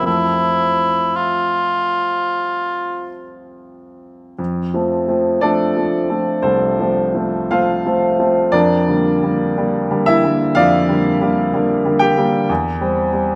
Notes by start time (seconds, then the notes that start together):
0.02 F2 F3 A3
0.06 C4 E4
1.16 F4
4.39 F2
4.74 F3 A3 C4
5.08 F3 A3 C4
5.41 F3 A3 C4 D4 A4 D5
5.76 F3 A3 C4
6.10 F3 A3 C4
6.42 C2 C4 A4 C5
6.80 F3 A3 C4
7.15 F3 A3 C4
7.51 F3 A3 C4 F4 C5 F5
7.86 F3 A3 C4
8.19 F3 A3 C4
8.52 F2 D4 A#4 D5
8.88 D3 G3 A#3
9.23 D3 G3 A#3
9.57 D3 G3 A#3
9.91 D3 G3 A#3
10.06 E4 E5
10.24 D3 G3 A#3
10.55 F2 F4 D5 F5
10.88 D3 G3 A#3
11.21 D3 G3 A#3
11.53 D3 G3 A#3
11.85 D3 G3 A#3
11.99 G4 G5
12.17 D3 G3 A#3
12.49 E2
12.81 G3 C4
13.13 G3 C4